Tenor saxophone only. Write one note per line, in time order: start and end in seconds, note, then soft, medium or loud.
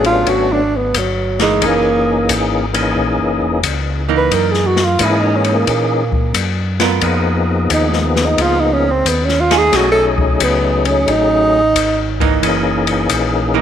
0.06 0.31 F4 loud
0.30 0.54 F#4 loud
0.53 0.78 D4 medium
0.76 0.99 B3 medium
0.98 1.41 F#3 medium
1.41 1.67 G#3 medium
1.66 2.31 A#3 medium
4.17 4.36 B4 medium
4.34 4.53 A#4 medium
4.52 4.68 G#4 medium
4.66 4.86 F#4 medium
4.85 5.05 F4 medium
5.04 5.21 E4 medium
5.20 5.38 D#4 medium
5.36 5.56 C#4 medium
5.55 6.57 A#3 medium
7.73 7.91 D#4 medium
7.90 8.08 G#3 medium
8.06 8.27 B3 medium
8.25 8.43 D#4 medium
8.41 8.61 F4 loud
8.60 8.75 D#4 medium
8.73 8.93 C#4 medium
8.91 9.10 C4 medium
9.08 9.26 B3 medium
9.25 9.42 C#4 medium
9.40 9.59 F4 medium
9.58 9.77 G#4 loud
9.76 9.91 F#4 medium
9.92 10.06 A4 loud
10.43 10.88 B3 medium
10.87 11.12 C#4 medium
11.10 12.21 D#4 loud